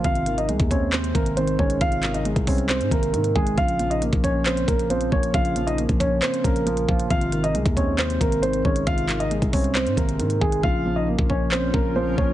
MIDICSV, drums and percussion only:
0, 0, Header, 1, 2, 480
1, 0, Start_track
1, 0, Tempo, 441176
1, 50, Time_signature, 4, 2, 24, 8
1, 13419, End_track
2, 0, Start_track
2, 0, Title_t, "Drums"
2, 48, Note_on_c, 9, 42, 81
2, 49, Note_on_c, 9, 36, 124
2, 157, Note_off_c, 9, 42, 0
2, 158, Note_off_c, 9, 36, 0
2, 167, Note_on_c, 9, 42, 57
2, 276, Note_off_c, 9, 42, 0
2, 286, Note_on_c, 9, 42, 85
2, 395, Note_off_c, 9, 42, 0
2, 413, Note_on_c, 9, 42, 62
2, 522, Note_off_c, 9, 42, 0
2, 531, Note_on_c, 9, 42, 80
2, 640, Note_off_c, 9, 42, 0
2, 648, Note_on_c, 9, 42, 51
2, 649, Note_on_c, 9, 36, 94
2, 757, Note_off_c, 9, 36, 0
2, 757, Note_off_c, 9, 42, 0
2, 770, Note_on_c, 9, 36, 89
2, 775, Note_on_c, 9, 42, 80
2, 878, Note_off_c, 9, 36, 0
2, 884, Note_off_c, 9, 42, 0
2, 1006, Note_on_c, 9, 42, 74
2, 1008, Note_on_c, 9, 39, 106
2, 1115, Note_off_c, 9, 42, 0
2, 1117, Note_off_c, 9, 39, 0
2, 1132, Note_on_c, 9, 42, 61
2, 1241, Note_off_c, 9, 42, 0
2, 1250, Note_on_c, 9, 36, 97
2, 1254, Note_on_c, 9, 42, 92
2, 1358, Note_off_c, 9, 36, 0
2, 1363, Note_off_c, 9, 42, 0
2, 1373, Note_on_c, 9, 42, 53
2, 1482, Note_off_c, 9, 42, 0
2, 1491, Note_on_c, 9, 42, 84
2, 1600, Note_off_c, 9, 42, 0
2, 1605, Note_on_c, 9, 42, 52
2, 1713, Note_off_c, 9, 42, 0
2, 1730, Note_on_c, 9, 36, 98
2, 1839, Note_off_c, 9, 36, 0
2, 1848, Note_on_c, 9, 42, 72
2, 1957, Note_off_c, 9, 42, 0
2, 1968, Note_on_c, 9, 42, 80
2, 1969, Note_on_c, 9, 36, 119
2, 2077, Note_off_c, 9, 42, 0
2, 2078, Note_off_c, 9, 36, 0
2, 2087, Note_on_c, 9, 42, 55
2, 2196, Note_off_c, 9, 42, 0
2, 2206, Note_on_c, 9, 42, 83
2, 2209, Note_on_c, 9, 39, 99
2, 2315, Note_off_c, 9, 42, 0
2, 2318, Note_off_c, 9, 39, 0
2, 2333, Note_on_c, 9, 42, 61
2, 2442, Note_off_c, 9, 42, 0
2, 2452, Note_on_c, 9, 42, 77
2, 2561, Note_off_c, 9, 42, 0
2, 2569, Note_on_c, 9, 36, 96
2, 2570, Note_on_c, 9, 42, 52
2, 2678, Note_off_c, 9, 36, 0
2, 2678, Note_off_c, 9, 42, 0
2, 2690, Note_on_c, 9, 36, 89
2, 2690, Note_on_c, 9, 42, 80
2, 2696, Note_on_c, 9, 46, 85
2, 2799, Note_off_c, 9, 36, 0
2, 2799, Note_off_c, 9, 42, 0
2, 2805, Note_off_c, 9, 46, 0
2, 2810, Note_on_c, 9, 42, 49
2, 2919, Note_off_c, 9, 42, 0
2, 2928, Note_on_c, 9, 42, 75
2, 2929, Note_on_c, 9, 39, 110
2, 3036, Note_off_c, 9, 42, 0
2, 3038, Note_off_c, 9, 39, 0
2, 3054, Note_on_c, 9, 42, 60
2, 3162, Note_off_c, 9, 42, 0
2, 3171, Note_on_c, 9, 36, 95
2, 3176, Note_on_c, 9, 42, 91
2, 3279, Note_off_c, 9, 36, 0
2, 3285, Note_off_c, 9, 42, 0
2, 3295, Note_on_c, 9, 42, 55
2, 3404, Note_off_c, 9, 42, 0
2, 3414, Note_on_c, 9, 42, 82
2, 3523, Note_off_c, 9, 42, 0
2, 3527, Note_on_c, 9, 42, 51
2, 3636, Note_off_c, 9, 42, 0
2, 3651, Note_on_c, 9, 36, 97
2, 3760, Note_off_c, 9, 36, 0
2, 3772, Note_on_c, 9, 42, 62
2, 3880, Note_off_c, 9, 42, 0
2, 3890, Note_on_c, 9, 36, 119
2, 3891, Note_on_c, 9, 42, 60
2, 3999, Note_off_c, 9, 36, 0
2, 4000, Note_off_c, 9, 42, 0
2, 4009, Note_on_c, 9, 42, 56
2, 4118, Note_off_c, 9, 42, 0
2, 4128, Note_on_c, 9, 42, 86
2, 4237, Note_off_c, 9, 42, 0
2, 4255, Note_on_c, 9, 42, 60
2, 4364, Note_off_c, 9, 42, 0
2, 4373, Note_on_c, 9, 42, 80
2, 4482, Note_off_c, 9, 42, 0
2, 4490, Note_on_c, 9, 36, 93
2, 4491, Note_on_c, 9, 42, 51
2, 4598, Note_off_c, 9, 36, 0
2, 4599, Note_off_c, 9, 42, 0
2, 4611, Note_on_c, 9, 36, 88
2, 4618, Note_on_c, 9, 42, 82
2, 4720, Note_off_c, 9, 36, 0
2, 4727, Note_off_c, 9, 42, 0
2, 4849, Note_on_c, 9, 42, 73
2, 4851, Note_on_c, 9, 39, 108
2, 4957, Note_off_c, 9, 42, 0
2, 4959, Note_off_c, 9, 39, 0
2, 4975, Note_on_c, 9, 42, 60
2, 5084, Note_off_c, 9, 42, 0
2, 5091, Note_on_c, 9, 36, 101
2, 5097, Note_on_c, 9, 42, 90
2, 5200, Note_off_c, 9, 36, 0
2, 5206, Note_off_c, 9, 42, 0
2, 5216, Note_on_c, 9, 42, 54
2, 5325, Note_off_c, 9, 42, 0
2, 5334, Note_on_c, 9, 42, 80
2, 5443, Note_off_c, 9, 42, 0
2, 5447, Note_on_c, 9, 42, 53
2, 5556, Note_off_c, 9, 42, 0
2, 5572, Note_on_c, 9, 36, 96
2, 5680, Note_off_c, 9, 36, 0
2, 5691, Note_on_c, 9, 42, 72
2, 5800, Note_off_c, 9, 42, 0
2, 5810, Note_on_c, 9, 36, 120
2, 5811, Note_on_c, 9, 42, 80
2, 5919, Note_off_c, 9, 36, 0
2, 5919, Note_off_c, 9, 42, 0
2, 5929, Note_on_c, 9, 42, 57
2, 6038, Note_off_c, 9, 42, 0
2, 6049, Note_on_c, 9, 42, 88
2, 6158, Note_off_c, 9, 42, 0
2, 6175, Note_on_c, 9, 42, 61
2, 6284, Note_off_c, 9, 42, 0
2, 6293, Note_on_c, 9, 42, 80
2, 6401, Note_off_c, 9, 42, 0
2, 6410, Note_on_c, 9, 36, 93
2, 6410, Note_on_c, 9, 42, 53
2, 6518, Note_off_c, 9, 36, 0
2, 6519, Note_off_c, 9, 42, 0
2, 6531, Note_on_c, 9, 36, 86
2, 6537, Note_on_c, 9, 42, 81
2, 6639, Note_off_c, 9, 36, 0
2, 6646, Note_off_c, 9, 42, 0
2, 6769, Note_on_c, 9, 42, 75
2, 6771, Note_on_c, 9, 39, 107
2, 6877, Note_off_c, 9, 42, 0
2, 6879, Note_off_c, 9, 39, 0
2, 6895, Note_on_c, 9, 42, 60
2, 7003, Note_off_c, 9, 42, 0
2, 7011, Note_on_c, 9, 36, 99
2, 7017, Note_on_c, 9, 42, 93
2, 7120, Note_off_c, 9, 36, 0
2, 7126, Note_off_c, 9, 42, 0
2, 7136, Note_on_c, 9, 42, 54
2, 7245, Note_off_c, 9, 42, 0
2, 7254, Note_on_c, 9, 42, 82
2, 7363, Note_off_c, 9, 42, 0
2, 7367, Note_on_c, 9, 42, 52
2, 7475, Note_off_c, 9, 42, 0
2, 7491, Note_on_c, 9, 36, 95
2, 7600, Note_off_c, 9, 36, 0
2, 7611, Note_on_c, 9, 42, 71
2, 7720, Note_off_c, 9, 42, 0
2, 7730, Note_on_c, 9, 36, 124
2, 7730, Note_on_c, 9, 42, 82
2, 7839, Note_off_c, 9, 36, 0
2, 7839, Note_off_c, 9, 42, 0
2, 7849, Note_on_c, 9, 42, 54
2, 7957, Note_off_c, 9, 42, 0
2, 7968, Note_on_c, 9, 42, 88
2, 8077, Note_off_c, 9, 42, 0
2, 8094, Note_on_c, 9, 42, 60
2, 8203, Note_off_c, 9, 42, 0
2, 8212, Note_on_c, 9, 42, 80
2, 8321, Note_off_c, 9, 42, 0
2, 8329, Note_on_c, 9, 36, 92
2, 8330, Note_on_c, 9, 42, 53
2, 8438, Note_off_c, 9, 36, 0
2, 8439, Note_off_c, 9, 42, 0
2, 8450, Note_on_c, 9, 36, 86
2, 8457, Note_on_c, 9, 42, 79
2, 8559, Note_off_c, 9, 36, 0
2, 8565, Note_off_c, 9, 42, 0
2, 8688, Note_on_c, 9, 42, 73
2, 8690, Note_on_c, 9, 39, 111
2, 8797, Note_off_c, 9, 42, 0
2, 8799, Note_off_c, 9, 39, 0
2, 8813, Note_on_c, 9, 42, 61
2, 8922, Note_off_c, 9, 42, 0
2, 8930, Note_on_c, 9, 36, 98
2, 8936, Note_on_c, 9, 42, 93
2, 9039, Note_off_c, 9, 36, 0
2, 9045, Note_off_c, 9, 42, 0
2, 9055, Note_on_c, 9, 42, 53
2, 9164, Note_off_c, 9, 42, 0
2, 9172, Note_on_c, 9, 42, 83
2, 9281, Note_off_c, 9, 42, 0
2, 9285, Note_on_c, 9, 42, 52
2, 9394, Note_off_c, 9, 42, 0
2, 9411, Note_on_c, 9, 36, 97
2, 9519, Note_off_c, 9, 36, 0
2, 9529, Note_on_c, 9, 42, 75
2, 9638, Note_off_c, 9, 42, 0
2, 9649, Note_on_c, 9, 42, 84
2, 9650, Note_on_c, 9, 36, 122
2, 9758, Note_off_c, 9, 36, 0
2, 9758, Note_off_c, 9, 42, 0
2, 9768, Note_on_c, 9, 42, 56
2, 9876, Note_off_c, 9, 42, 0
2, 9887, Note_on_c, 9, 42, 86
2, 9889, Note_on_c, 9, 39, 98
2, 9995, Note_off_c, 9, 42, 0
2, 9998, Note_off_c, 9, 39, 0
2, 10012, Note_on_c, 9, 42, 62
2, 10121, Note_off_c, 9, 42, 0
2, 10131, Note_on_c, 9, 42, 78
2, 10240, Note_off_c, 9, 42, 0
2, 10249, Note_on_c, 9, 36, 97
2, 10250, Note_on_c, 9, 42, 52
2, 10358, Note_off_c, 9, 36, 0
2, 10358, Note_off_c, 9, 42, 0
2, 10370, Note_on_c, 9, 36, 87
2, 10370, Note_on_c, 9, 42, 79
2, 10376, Note_on_c, 9, 46, 86
2, 10479, Note_off_c, 9, 36, 0
2, 10479, Note_off_c, 9, 42, 0
2, 10485, Note_off_c, 9, 46, 0
2, 10491, Note_on_c, 9, 42, 46
2, 10600, Note_off_c, 9, 42, 0
2, 10608, Note_on_c, 9, 42, 74
2, 10610, Note_on_c, 9, 39, 111
2, 10717, Note_off_c, 9, 42, 0
2, 10719, Note_off_c, 9, 39, 0
2, 10734, Note_on_c, 9, 42, 59
2, 10842, Note_off_c, 9, 42, 0
2, 10850, Note_on_c, 9, 36, 96
2, 10856, Note_on_c, 9, 42, 91
2, 10959, Note_off_c, 9, 36, 0
2, 10964, Note_off_c, 9, 42, 0
2, 10975, Note_on_c, 9, 42, 54
2, 11083, Note_off_c, 9, 42, 0
2, 11093, Note_on_c, 9, 42, 82
2, 11202, Note_off_c, 9, 42, 0
2, 11206, Note_on_c, 9, 42, 54
2, 11315, Note_off_c, 9, 42, 0
2, 11331, Note_on_c, 9, 36, 97
2, 11440, Note_off_c, 9, 36, 0
2, 11450, Note_on_c, 9, 42, 60
2, 11558, Note_off_c, 9, 42, 0
2, 11570, Note_on_c, 9, 36, 123
2, 11679, Note_off_c, 9, 36, 0
2, 12170, Note_on_c, 9, 36, 95
2, 12279, Note_off_c, 9, 36, 0
2, 12291, Note_on_c, 9, 36, 84
2, 12400, Note_off_c, 9, 36, 0
2, 12529, Note_on_c, 9, 39, 107
2, 12638, Note_off_c, 9, 39, 0
2, 12771, Note_on_c, 9, 36, 94
2, 12880, Note_off_c, 9, 36, 0
2, 13252, Note_on_c, 9, 36, 97
2, 13361, Note_off_c, 9, 36, 0
2, 13419, End_track
0, 0, End_of_file